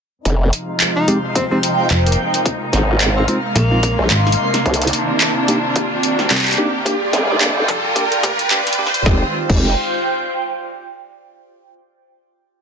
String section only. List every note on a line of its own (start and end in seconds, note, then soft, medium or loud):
0.25 6.82 C3 medium
0.25 2.43 F3 medium
0.25 2.43 G#3 medium
0.25 4.62 D#4 medium
2.46 4.64 G#3 medium
2.46 9.02 A#3 medium
4.66 6.84 D#3 medium
4.66 6.84 D4 medium
6.85 9.04 D3 medium
6.85 9.04 G3 medium
6.85 9.04 F4 medium
9.05 9.31 D#3 medium
9.05 9.31 G#3 medium
9.05 9.31 C4 medium
9.05 9.31 F4 medium